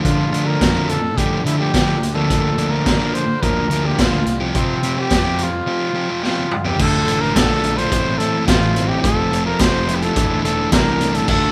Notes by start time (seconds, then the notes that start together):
Already playing: D3 F3 A3 D4
0.04 D3 F3 A3 D4 F4, kick, closed hi-hat
0.32 D3 F3 A3 D4, closed hi-hat
0.46 D3 F3 A3 D4 A#4
0.61 F2 D3 F3 A3 D4, kick, snare, closed hi-hat
0.75 D3 F3 A3 D4
0.89 A4, closed hi-hat
1.17 D3 F3 A3 D4 G4, kick, closed hi-hat
1.45 D3 F3 A3 D4 E4, closed hi-hat
1.59 D3 F3 A3 D4 G4
1.73 D3 F3 A3 D4, kick, snare, closed hi-hat
2.02 D2 D3 F3 A#3 D4, closed hi-hat
2.08 G4
2.14 D3 F3 A#3 D4 A4
2.30 D2 D3 F3 A#3 D4, kick, closed hi-hat
2.58 D3 F3 A#3 D4, closed hi-hat
2.70 D3 F3 A#3 D4 A#4
2.85 D3 F3 A#3 D4, kick, snare, closed hi-hat
2.99 D3 F3 A#3 D4
3.14 C5, closed hi-hat
3.42 D2 D3 F3 A#3 D4 A#4, kick, closed hi-hat
3.70 D3 F3 A#3 D4, closed hi-hat
3.85 D3 F3 A#3 D4 G4
3.98 D2 D3 F3 A#3 D4 F4, kick, snare, closed hi-hat
4.26 C2 C3 F3 C4 F4, closed hi-hat
4.30 G4
4.40 F3 C4 F4 G4
4.55 C3 F3 C4 F4 G4, kick, closed hi-hat
4.83 F3 C4 F4 G4, closed hi-hat
4.97 F3 C4 F4 G4
5.10 F2 C3 F3 C4 F4, kick, snare, closed hi-hat
5.14 G4
5.25 F3 C4 F4 G4
5.38 closed hi-hat
5.43 F4
5.67 F3 C4 F4 G4
5.94 F3 C4 F4 G4
5.98 C3
6.09 F3 C4 F4 G4
6.23 F3 C4 F4 G4, snare
6.38 high tom
6.51 mid tom
6.65 F3 C4 F4 G4, floor tom
6.77 D2 D3 A3 D4 F4, kick, crash
6.81 A4
7.05 A1 D3 A3 D4 F4, closed hi-hat
7.20 A3 D4 F4 A#4
7.34 A#1 D3 A3 D4 F4 A4, kick, snare, clap, closed hi-hat
7.62 D3 A3 D4 F4, closed hi-hat
7.76 A3 D4 F4 C5, closed hi-hat
7.91 A1 A2 E3 A3 C4 E4, kick, closed hi-hat
8.05 A3 C4 E4
8.18 E3 A3 C4 A4, closed hi-hat
8.22 E4
8.47 A1 A2 E3 A3 C4 F4, kick, snare, clap, closed hi-hat
8.51 E4
8.62 A3 C4 E4
8.75 E3 A3 C4, closed hi-hat
8.79 E4
8.88 C4 E4 G4
8.92 A3
9.01 F1 F3 A3 C4 A4, kick, closed hi-hat
9.06 F4
9.31 F3 A3 C4 F4, closed hi-hat
9.45 A3 C4 F4 A#4
9.59 F1 F3 A3 C4 F4 C5, kick, snare, clap, closed hi-hat
9.87 F3 A3 C4 E4, closed hi-hat
9.91 F4
9.96 G4
10.01 A3 C4 F4 A4, closed hi-hat
10.15 E1 E3 A3 D4 E4, kick, closed hi-hat
10.29 A3 D4 E4
10.43 E3 A3 D4 E4 A4, closed hi-hat
10.70 C2 E3 A3 D4 E4 A#4, kick, snare, clap, closed hi-hat
10.85 A3 D4 E4
11.00 E3 A3 D4 E4, closed hi-hat
11.13 A3 D4 E4 A4, closed hi-hat
11.28 D2 D3 A3 D4 F4 A4, kick, crash